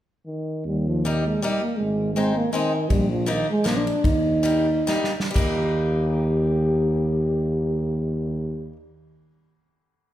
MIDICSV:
0, 0, Header, 1, 5, 480
1, 0, Start_track
1, 0, Key_signature, -3, "major"
1, 0, Tempo, 373134
1, 853, Time_signature, 3, 2, 24, 8
1, 4208, Tempo, 392927
1, 5648, Tempo, 452489
1, 6608, Tempo, 477327
1, 11416, End_track
2, 0, Start_track
2, 0, Title_t, "Steel-string acoustic guitar"
2, 0, Program_c, 0, 25
2, 1350, Note_on_c, 0, 55, 52
2, 1360, Note_on_c, 0, 58, 39
2, 1369, Note_on_c, 0, 63, 55
2, 1585, Note_off_c, 0, 55, 0
2, 1587, Note_off_c, 0, 58, 0
2, 1594, Note_off_c, 0, 63, 0
2, 1832, Note_on_c, 0, 55, 51
2, 1842, Note_on_c, 0, 58, 45
2, 1853, Note_on_c, 0, 63, 59
2, 2065, Note_off_c, 0, 55, 0
2, 2069, Note_off_c, 0, 58, 0
2, 2075, Note_off_c, 0, 63, 0
2, 2779, Note_on_c, 0, 56, 53
2, 2790, Note_on_c, 0, 60, 49
2, 2800, Note_on_c, 0, 63, 57
2, 3013, Note_off_c, 0, 56, 0
2, 3018, Note_off_c, 0, 60, 0
2, 3024, Note_off_c, 0, 63, 0
2, 3250, Note_on_c, 0, 56, 51
2, 3265, Note_on_c, 0, 60, 53
2, 3280, Note_on_c, 0, 63, 59
2, 3487, Note_off_c, 0, 56, 0
2, 3495, Note_off_c, 0, 60, 0
2, 3502, Note_off_c, 0, 63, 0
2, 4198, Note_on_c, 0, 53, 55
2, 4208, Note_on_c, 0, 58, 51
2, 4221, Note_on_c, 0, 63, 68
2, 4431, Note_off_c, 0, 53, 0
2, 4435, Note_off_c, 0, 58, 0
2, 4442, Note_off_c, 0, 63, 0
2, 4659, Note_on_c, 0, 53, 53
2, 4670, Note_on_c, 0, 58, 55
2, 4684, Note_on_c, 0, 62, 59
2, 4898, Note_off_c, 0, 53, 0
2, 4903, Note_off_c, 0, 58, 0
2, 4910, Note_off_c, 0, 62, 0
2, 5623, Note_on_c, 0, 55, 55
2, 5634, Note_on_c, 0, 58, 38
2, 5646, Note_on_c, 0, 63, 56
2, 5862, Note_off_c, 0, 55, 0
2, 5863, Note_off_c, 0, 58, 0
2, 5871, Note_off_c, 0, 63, 0
2, 6094, Note_on_c, 0, 55, 68
2, 6099, Note_on_c, 0, 58, 53
2, 6108, Note_on_c, 0, 63, 66
2, 6345, Note_off_c, 0, 55, 0
2, 6347, Note_off_c, 0, 58, 0
2, 6352, Note_off_c, 0, 63, 0
2, 6556, Note_on_c, 0, 55, 49
2, 6594, Note_on_c, 0, 58, 47
2, 6633, Note_on_c, 0, 63, 51
2, 9996, Note_off_c, 0, 55, 0
2, 10032, Note_off_c, 0, 58, 0
2, 10070, Note_off_c, 0, 63, 0
2, 11416, End_track
3, 0, Start_track
3, 0, Title_t, "Euphonium"
3, 0, Program_c, 1, 58
3, 340, Note_on_c, 1, 51, 64
3, 804, Note_off_c, 1, 51, 0
3, 857, Note_on_c, 1, 55, 63
3, 1124, Note_on_c, 1, 53, 62
3, 1143, Note_off_c, 1, 55, 0
3, 1343, Note_off_c, 1, 53, 0
3, 1363, Note_on_c, 1, 51, 60
3, 1604, Note_on_c, 1, 56, 73
3, 1623, Note_off_c, 1, 51, 0
3, 1828, Note_on_c, 1, 55, 72
3, 1847, Note_off_c, 1, 56, 0
3, 2074, Note_off_c, 1, 55, 0
3, 2082, Note_on_c, 1, 58, 67
3, 2270, Note_on_c, 1, 56, 69
3, 2290, Note_off_c, 1, 58, 0
3, 2750, Note_off_c, 1, 56, 0
3, 2758, Note_on_c, 1, 56, 71
3, 3010, Note_off_c, 1, 56, 0
3, 3025, Note_on_c, 1, 58, 82
3, 3232, Note_off_c, 1, 58, 0
3, 3256, Note_on_c, 1, 51, 78
3, 3732, Note_on_c, 1, 55, 89
3, 3751, Note_off_c, 1, 51, 0
3, 3991, Note_off_c, 1, 55, 0
3, 3998, Note_on_c, 1, 53, 74
3, 4251, Note_on_c, 1, 51, 67
3, 4270, Note_off_c, 1, 53, 0
3, 4482, Note_off_c, 1, 51, 0
3, 4490, Note_on_c, 1, 56, 89
3, 4684, Note_on_c, 1, 58, 80
3, 4702, Note_off_c, 1, 56, 0
3, 4814, Note_on_c, 1, 62, 91
3, 4833, Note_off_c, 1, 58, 0
3, 5163, Note_on_c, 1, 63, 84
3, 5181, Note_off_c, 1, 62, 0
3, 6387, Note_off_c, 1, 63, 0
3, 6616, Note_on_c, 1, 67, 70
3, 10053, Note_off_c, 1, 67, 0
3, 11416, End_track
4, 0, Start_track
4, 0, Title_t, "Tuba"
4, 0, Program_c, 2, 58
4, 835, Note_on_c, 2, 39, 80
4, 1784, Note_off_c, 2, 39, 0
4, 2311, Note_on_c, 2, 32, 74
4, 3235, Note_off_c, 2, 32, 0
4, 3731, Note_on_c, 2, 34, 93
4, 4351, Note_off_c, 2, 34, 0
4, 4669, Note_on_c, 2, 34, 82
4, 4980, Note_off_c, 2, 34, 0
4, 5146, Note_on_c, 2, 39, 76
4, 6119, Note_off_c, 2, 39, 0
4, 6608, Note_on_c, 2, 39, 90
4, 10045, Note_off_c, 2, 39, 0
4, 11416, End_track
5, 0, Start_track
5, 0, Title_t, "Drums"
5, 3732, Note_on_c, 9, 51, 40
5, 3735, Note_on_c, 9, 36, 66
5, 3861, Note_off_c, 9, 51, 0
5, 3863, Note_off_c, 9, 36, 0
5, 4212, Note_on_c, 9, 51, 35
5, 4335, Note_off_c, 9, 51, 0
5, 4681, Note_on_c, 9, 38, 50
5, 4681, Note_on_c, 9, 51, 36
5, 4803, Note_off_c, 9, 38, 0
5, 4803, Note_off_c, 9, 51, 0
5, 4939, Note_on_c, 9, 51, 32
5, 5061, Note_off_c, 9, 51, 0
5, 5151, Note_on_c, 9, 36, 77
5, 5157, Note_on_c, 9, 51, 39
5, 5273, Note_off_c, 9, 36, 0
5, 5280, Note_off_c, 9, 51, 0
5, 5651, Note_on_c, 9, 51, 41
5, 5757, Note_off_c, 9, 51, 0
5, 6105, Note_on_c, 9, 38, 35
5, 6211, Note_off_c, 9, 38, 0
5, 6275, Note_on_c, 9, 38, 36
5, 6381, Note_off_c, 9, 38, 0
5, 6443, Note_on_c, 9, 38, 51
5, 6549, Note_off_c, 9, 38, 0
5, 6609, Note_on_c, 9, 36, 70
5, 6611, Note_on_c, 9, 49, 60
5, 6710, Note_off_c, 9, 36, 0
5, 6712, Note_off_c, 9, 49, 0
5, 11416, End_track
0, 0, End_of_file